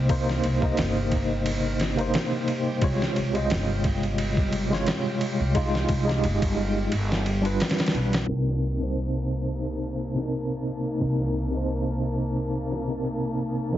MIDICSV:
0, 0, Header, 1, 6, 480
1, 0, Start_track
1, 0, Tempo, 681818
1, 70, Time_signature, 4, 2, 24, 8
1, 9699, End_track
2, 0, Start_track
2, 0, Title_t, "Violin section"
2, 0, Program_c, 0, 48
2, 5834, Note_on_c, 0, 81, 74
2, 5835, Note_on_c, 0, 58, 76
2, 9699, Note_off_c, 0, 58, 0
2, 9699, Note_off_c, 0, 81, 0
2, 9699, End_track
3, 0, Start_track
3, 0, Title_t, "Synth texture"
3, 0, Program_c, 1, 99
3, 0, Note_on_c, 1, 55, 86
3, 0, Note_on_c, 1, 67, 87
3, 5828, Note_on_c, 1, 63, 75
3, 5843, Note_off_c, 1, 67, 0
3, 5844, Note_off_c, 1, 55, 0
3, 9699, Note_off_c, 1, 63, 0
3, 9699, End_track
4, 0, Start_track
4, 0, Title_t, "Tine electric piano"
4, 0, Program_c, 2, 4
4, 0, Control_c, 2, 64, 127
4, 0, Note_on_c, 2, 48, 79
4, 0, Note_on_c, 2, 58, 74
4, 0, Note_on_c, 2, 63, 74
4, 0, Note_on_c, 2, 72, 89
4, 60, Note_off_c, 2, 48, 0
4, 60, Note_on_c, 2, 48, 89
4, 66, Note_off_c, 2, 58, 0
4, 66, Note_on_c, 2, 58, 85
4, 70, Note_off_c, 2, 63, 0
4, 70, Note_on_c, 2, 63, 80
4, 79, Note_off_c, 2, 72, 0
4, 79, Note_on_c, 2, 72, 99
4, 405, Note_off_c, 2, 48, 0
4, 408, Note_off_c, 2, 58, 0
4, 410, Note_off_c, 2, 63, 0
4, 414, Note_off_c, 2, 72, 0
4, 425, Note_on_c, 2, 48, 79
4, 434, Note_on_c, 2, 58, 71
4, 447, Note_on_c, 2, 63, 68
4, 459, Note_on_c, 2, 75, 86
4, 1362, Note_off_c, 2, 48, 0
4, 1366, Note_off_c, 2, 58, 0
4, 1373, Note_off_c, 2, 63, 0
4, 1373, Note_on_c, 2, 48, 78
4, 1379, Note_off_c, 2, 75, 0
4, 1387, Note_on_c, 2, 58, 77
4, 1399, Note_on_c, 2, 63, 78
4, 1414, Note_on_c, 2, 72, 88
4, 1950, Note_off_c, 2, 48, 0
4, 1957, Note_off_c, 2, 58, 0
4, 1963, Note_off_c, 2, 63, 0
4, 1970, Note_off_c, 2, 72, 0
4, 1981, Note_on_c, 2, 48, 89
4, 1986, Note_on_c, 2, 56, 79
4, 1994, Note_on_c, 2, 65, 84
4, 1999, Note_on_c, 2, 73, 98
4, 2000, Control_c, 2, 64, 0
4, 2124, Control_c, 2, 64, 127
4, 2325, Note_off_c, 2, 48, 0
4, 2328, Note_off_c, 2, 56, 0
4, 2332, Note_off_c, 2, 65, 0
4, 2334, Note_off_c, 2, 73, 0
4, 2341, Note_on_c, 2, 48, 83
4, 2352, Note_on_c, 2, 56, 68
4, 2367, Note_on_c, 2, 65, 71
4, 2379, Note_on_c, 2, 75, 86
4, 3280, Note_off_c, 2, 48, 0
4, 3285, Note_off_c, 2, 56, 0
4, 3293, Note_off_c, 2, 65, 0
4, 3299, Note_off_c, 2, 75, 0
4, 3299, Note_on_c, 2, 48, 86
4, 3313, Note_on_c, 2, 56, 77
4, 3327, Note_on_c, 2, 65, 81
4, 3338, Note_on_c, 2, 73, 92
4, 3873, Note_off_c, 2, 48, 0
4, 3880, Note_off_c, 2, 56, 0
4, 3887, Note_off_c, 2, 65, 0
4, 3892, Note_off_c, 2, 73, 0
4, 3905, Note_on_c, 2, 56, 93
4, 3914, Note_on_c, 2, 63, 83
4, 3920, Control_c, 2, 64, 0
4, 3921, Note_on_c, 2, 65, 102
4, 4045, Control_c, 2, 64, 127
4, 4247, Note_off_c, 2, 56, 0
4, 4252, Note_off_c, 2, 63, 0
4, 4255, Note_off_c, 2, 65, 0
4, 4260, Note_on_c, 2, 56, 81
4, 4277, Note_on_c, 2, 63, 72
4, 4298, Note_on_c, 2, 67, 85
4, 4847, Note_off_c, 2, 56, 0
4, 4855, Note_off_c, 2, 63, 0
4, 4866, Note_off_c, 2, 67, 0
4, 4878, Control_c, 2, 64, 0
4, 5019, Control_c, 2, 64, 127
4, 5220, Note_on_c, 2, 55, 81
4, 5230, Note_on_c, 2, 62, 72
4, 5243, Note_on_c, 2, 65, 77
4, 5254, Note_on_c, 2, 71, 89
4, 5793, Note_off_c, 2, 55, 0
4, 5798, Note_off_c, 2, 62, 0
4, 5805, Note_off_c, 2, 65, 0
4, 5810, Note_off_c, 2, 71, 0
4, 5817, Note_on_c, 2, 48, 78
4, 5823, Note_on_c, 2, 60, 68
4, 5829, Note_on_c, 2, 63, 64
4, 5837, Note_on_c, 2, 70, 87
4, 5840, Control_c, 2, 64, 0
4, 5965, Control_c, 2, 64, 127
4, 6163, Note_off_c, 2, 48, 0
4, 6166, Note_off_c, 2, 60, 0
4, 6169, Note_off_c, 2, 63, 0
4, 6173, Note_off_c, 2, 70, 0
4, 6181, Note_on_c, 2, 48, 65
4, 6191, Note_on_c, 2, 60, 60
4, 6203, Note_on_c, 2, 63, 62
4, 6215, Note_on_c, 2, 72, 78
4, 7120, Note_off_c, 2, 48, 0
4, 7124, Note_off_c, 2, 60, 0
4, 7131, Note_off_c, 2, 63, 0
4, 7137, Note_off_c, 2, 72, 0
4, 7142, Note_on_c, 2, 48, 65
4, 7154, Note_on_c, 2, 60, 63
4, 7166, Note_on_c, 2, 63, 64
4, 7179, Note_on_c, 2, 70, 78
4, 7715, Note_off_c, 2, 48, 0
4, 7721, Note_off_c, 2, 60, 0
4, 7726, Note_off_c, 2, 63, 0
4, 7733, Note_off_c, 2, 70, 0
4, 7744, Note_on_c, 2, 48, 77
4, 7752, Note_on_c, 2, 60, 74
4, 7756, Note_on_c, 2, 63, 68
4, 7763, Note_on_c, 2, 70, 85
4, 8087, Note_off_c, 2, 48, 0
4, 8091, Note_off_c, 2, 60, 0
4, 8093, Note_off_c, 2, 63, 0
4, 8096, Note_off_c, 2, 70, 0
4, 8103, Note_on_c, 2, 48, 71
4, 8115, Note_on_c, 2, 60, 61
4, 8126, Note_on_c, 2, 63, 62
4, 8142, Note_on_c, 2, 72, 75
4, 9041, Note_off_c, 2, 48, 0
4, 9047, Note_off_c, 2, 60, 0
4, 9052, Note_off_c, 2, 63, 0
4, 9059, Note_on_c, 2, 48, 71
4, 9060, Note_off_c, 2, 72, 0
4, 9072, Note_on_c, 2, 60, 65
4, 9081, Note_on_c, 2, 63, 64
4, 9094, Note_on_c, 2, 70, 83
4, 9633, Note_off_c, 2, 48, 0
4, 9639, Note_off_c, 2, 60, 0
4, 9644, Note_off_c, 2, 63, 0
4, 9650, Note_off_c, 2, 70, 0
4, 9659, Note_on_c, 2, 53, 74
4, 9665, Note_on_c, 2, 60, 69
4, 9670, Note_on_c, 2, 63, 76
4, 9676, Note_on_c, 2, 69, 88
4, 9678, Control_c, 2, 64, 0
4, 9699, Note_off_c, 2, 53, 0
4, 9699, Note_off_c, 2, 60, 0
4, 9699, Note_off_c, 2, 63, 0
4, 9699, Note_off_c, 2, 69, 0
4, 9699, End_track
5, 0, Start_track
5, 0, Title_t, "Upright bass"
5, 0, Program_c, 3, 32
5, 0, Note_on_c, 3, 36, 84
5, 289, Note_off_c, 3, 36, 0
5, 316, Note_on_c, 3, 36, 81
5, 555, Note_on_c, 3, 31, 102
5, 565, Note_off_c, 3, 36, 0
5, 1491, Note_off_c, 3, 31, 0
5, 1988, Note_on_c, 3, 36, 99
5, 2104, Note_off_c, 3, 36, 0
5, 2237, Note_on_c, 3, 36, 82
5, 2476, Note_on_c, 3, 31, 100
5, 2486, Note_off_c, 3, 36, 0
5, 3412, Note_off_c, 3, 31, 0
5, 3804, Note_on_c, 3, 36, 82
5, 4130, Note_off_c, 3, 36, 0
5, 4148, Note_on_c, 3, 36, 91
5, 4397, Note_on_c, 3, 31, 105
5, 4408, Note_off_c, 3, 36, 0
5, 4853, Note_off_c, 3, 31, 0
5, 4871, Note_on_c, 3, 31, 95
5, 5329, Note_off_c, 3, 31, 0
5, 5590, Note_on_c, 3, 35, 91
5, 5804, Note_off_c, 3, 35, 0
5, 5829, Note_on_c, 3, 36, 75
5, 7728, Note_off_c, 3, 36, 0
5, 7754, Note_on_c, 3, 36, 75
5, 9650, Note_off_c, 3, 36, 0
5, 9674, Note_on_c, 3, 41, 78
5, 9699, Note_off_c, 3, 41, 0
5, 9699, End_track
6, 0, Start_track
6, 0, Title_t, "Drums"
6, 65, Note_on_c, 9, 51, 86
6, 66, Note_on_c, 9, 36, 107
6, 136, Note_off_c, 9, 51, 0
6, 137, Note_off_c, 9, 36, 0
6, 207, Note_on_c, 9, 38, 43
6, 277, Note_off_c, 9, 38, 0
6, 307, Note_on_c, 9, 51, 66
6, 378, Note_off_c, 9, 51, 0
6, 438, Note_on_c, 9, 36, 87
6, 508, Note_off_c, 9, 36, 0
6, 544, Note_on_c, 9, 51, 79
6, 553, Note_on_c, 9, 38, 104
6, 614, Note_off_c, 9, 51, 0
6, 623, Note_off_c, 9, 38, 0
6, 785, Note_on_c, 9, 51, 64
6, 786, Note_on_c, 9, 36, 91
6, 856, Note_off_c, 9, 36, 0
6, 856, Note_off_c, 9, 51, 0
6, 1025, Note_on_c, 9, 51, 94
6, 1096, Note_off_c, 9, 51, 0
6, 1264, Note_on_c, 9, 51, 71
6, 1274, Note_on_c, 9, 38, 51
6, 1335, Note_off_c, 9, 51, 0
6, 1344, Note_off_c, 9, 38, 0
6, 1397, Note_on_c, 9, 51, 46
6, 1468, Note_off_c, 9, 51, 0
6, 1505, Note_on_c, 9, 51, 87
6, 1514, Note_on_c, 9, 38, 115
6, 1575, Note_off_c, 9, 51, 0
6, 1585, Note_off_c, 9, 38, 0
6, 1744, Note_on_c, 9, 51, 63
6, 1815, Note_off_c, 9, 51, 0
6, 1982, Note_on_c, 9, 51, 85
6, 1985, Note_on_c, 9, 36, 99
6, 2052, Note_off_c, 9, 51, 0
6, 2055, Note_off_c, 9, 36, 0
6, 2126, Note_on_c, 9, 38, 52
6, 2197, Note_off_c, 9, 38, 0
6, 2226, Note_on_c, 9, 51, 62
6, 2296, Note_off_c, 9, 51, 0
6, 2357, Note_on_c, 9, 51, 39
6, 2428, Note_off_c, 9, 51, 0
6, 2464, Note_on_c, 9, 51, 85
6, 2474, Note_on_c, 9, 38, 113
6, 2535, Note_off_c, 9, 51, 0
6, 2544, Note_off_c, 9, 38, 0
6, 2704, Note_on_c, 9, 51, 67
6, 2706, Note_on_c, 9, 36, 97
6, 2774, Note_off_c, 9, 51, 0
6, 2777, Note_off_c, 9, 36, 0
6, 2839, Note_on_c, 9, 51, 44
6, 2909, Note_off_c, 9, 51, 0
6, 2945, Note_on_c, 9, 51, 94
6, 3015, Note_off_c, 9, 51, 0
6, 3078, Note_on_c, 9, 36, 92
6, 3148, Note_off_c, 9, 36, 0
6, 3186, Note_on_c, 9, 51, 70
6, 3256, Note_off_c, 9, 51, 0
6, 3330, Note_on_c, 9, 38, 42
6, 3401, Note_off_c, 9, 38, 0
6, 3425, Note_on_c, 9, 51, 85
6, 3434, Note_on_c, 9, 38, 109
6, 3495, Note_off_c, 9, 51, 0
6, 3504, Note_off_c, 9, 38, 0
6, 3667, Note_on_c, 9, 51, 67
6, 3738, Note_off_c, 9, 51, 0
6, 3906, Note_on_c, 9, 51, 83
6, 3908, Note_on_c, 9, 36, 100
6, 3977, Note_off_c, 9, 51, 0
6, 3979, Note_off_c, 9, 36, 0
6, 4049, Note_on_c, 9, 38, 46
6, 4119, Note_off_c, 9, 38, 0
6, 4144, Note_on_c, 9, 51, 71
6, 4148, Note_on_c, 9, 36, 90
6, 4214, Note_off_c, 9, 51, 0
6, 4218, Note_off_c, 9, 36, 0
6, 4290, Note_on_c, 9, 38, 44
6, 4360, Note_off_c, 9, 38, 0
6, 4390, Note_on_c, 9, 51, 61
6, 4461, Note_off_c, 9, 51, 0
6, 4520, Note_on_c, 9, 36, 103
6, 4521, Note_on_c, 9, 51, 81
6, 4591, Note_off_c, 9, 36, 0
6, 4591, Note_off_c, 9, 51, 0
6, 4870, Note_on_c, 9, 51, 81
6, 4940, Note_off_c, 9, 51, 0
6, 5012, Note_on_c, 9, 38, 47
6, 5082, Note_off_c, 9, 38, 0
6, 5111, Note_on_c, 9, 51, 61
6, 5181, Note_off_c, 9, 51, 0
6, 5245, Note_on_c, 9, 51, 41
6, 5316, Note_off_c, 9, 51, 0
6, 5352, Note_on_c, 9, 51, 66
6, 5361, Note_on_c, 9, 38, 91
6, 5418, Note_off_c, 9, 51, 0
6, 5418, Note_on_c, 9, 51, 64
6, 5427, Note_off_c, 9, 38, 0
6, 5427, Note_on_c, 9, 38, 87
6, 5481, Note_off_c, 9, 51, 0
6, 5481, Note_on_c, 9, 51, 61
6, 5490, Note_off_c, 9, 38, 0
6, 5490, Note_on_c, 9, 38, 89
6, 5537, Note_off_c, 9, 51, 0
6, 5537, Note_on_c, 9, 51, 67
6, 5546, Note_off_c, 9, 38, 0
6, 5546, Note_on_c, 9, 38, 85
6, 5595, Note_off_c, 9, 51, 0
6, 5595, Note_on_c, 9, 51, 56
6, 5616, Note_off_c, 9, 38, 0
6, 5665, Note_off_c, 9, 51, 0
6, 5724, Note_on_c, 9, 51, 83
6, 5733, Note_on_c, 9, 38, 108
6, 5794, Note_off_c, 9, 51, 0
6, 5804, Note_off_c, 9, 38, 0
6, 5834, Note_on_c, 9, 51, 66
6, 5904, Note_off_c, 9, 51, 0
6, 5977, Note_on_c, 9, 38, 46
6, 6047, Note_off_c, 9, 38, 0
6, 6072, Note_on_c, 9, 51, 56
6, 6142, Note_off_c, 9, 51, 0
6, 6205, Note_on_c, 9, 51, 35
6, 6275, Note_off_c, 9, 51, 0
6, 6312, Note_on_c, 9, 51, 73
6, 6382, Note_off_c, 9, 51, 0
6, 6552, Note_on_c, 9, 51, 55
6, 6622, Note_off_c, 9, 51, 0
6, 6683, Note_on_c, 9, 51, 38
6, 6754, Note_off_c, 9, 51, 0
6, 6791, Note_on_c, 9, 51, 78
6, 6862, Note_off_c, 9, 51, 0
6, 7031, Note_on_c, 9, 51, 61
6, 7102, Note_off_c, 9, 51, 0
6, 7171, Note_on_c, 9, 38, 36
6, 7241, Note_off_c, 9, 38, 0
6, 7267, Note_on_c, 9, 51, 73
6, 7338, Note_off_c, 9, 51, 0
6, 7510, Note_on_c, 9, 51, 55
6, 7580, Note_off_c, 9, 51, 0
6, 7749, Note_on_c, 9, 51, 66
6, 7819, Note_off_c, 9, 51, 0
6, 7893, Note_on_c, 9, 38, 37
6, 7963, Note_off_c, 9, 38, 0
6, 7993, Note_on_c, 9, 51, 54
6, 8063, Note_off_c, 9, 51, 0
6, 8230, Note_on_c, 9, 51, 69
6, 8300, Note_off_c, 9, 51, 0
6, 8469, Note_on_c, 9, 51, 55
6, 8540, Note_off_c, 9, 51, 0
6, 8705, Note_on_c, 9, 51, 79
6, 8775, Note_off_c, 9, 51, 0
6, 8945, Note_on_c, 9, 51, 59
6, 8954, Note_on_c, 9, 38, 46
6, 9015, Note_off_c, 9, 51, 0
6, 9024, Note_off_c, 9, 38, 0
6, 9076, Note_on_c, 9, 51, 39
6, 9146, Note_off_c, 9, 51, 0
6, 9183, Note_on_c, 9, 51, 77
6, 9254, Note_off_c, 9, 51, 0
6, 9424, Note_on_c, 9, 51, 60
6, 9494, Note_off_c, 9, 51, 0
6, 9664, Note_on_c, 9, 51, 65
6, 9699, Note_off_c, 9, 51, 0
6, 9699, End_track
0, 0, End_of_file